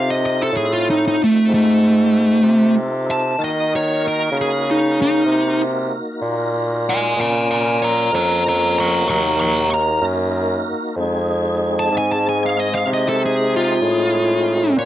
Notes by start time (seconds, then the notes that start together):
Already playing: C3 C4 D#4 F4 A4
0.10 D#5
0.26 D#5
0.43 A4
0.52 A2
0.57 G#4
0.73 F4
0.90 D#4
1.08 D#4
1.24 A3
1.48 G#2
1.54 A3
2.43 C3
3.11 A5
3.38 D#3 A#3 D#4 F#4 A#4
3.44 D#5
3.76 C#5
4.08 A#4
4.31 C#3
4.41 G#4
4.71 D#4
5.02 D#4
5.26 C3
6.22 A#2
6.89 D#5 G#5
7.17 A#2 C#4 F4 A#4 F5
7.21 A#3 G#5
7.51 F5 G#5
7.82 C#5 A#5
8.12 F2 C#5 A#5
8.48 C#5 A#5
8.79 A#5 C#6
9.06 D#2 A#3 D#4 F#4 A#4 C#6
9.10 A#5
9.40 A#5 C#6
9.74 A#5
10.01 F#2
10.96 F2 G#3 C4 D#4 G#4
11.79 A5
11.91 G#2
11.98 G#5
12.12 A5
12.29 G#5
12.46 F5
12.60 D#5
12.75 F5
12.86 C3
12.94 D#5
13.09 A4
13.26 G#4
13.56 F4
13.82 A2
14.76 A#2 C#4 D4 F#4 B4 C#5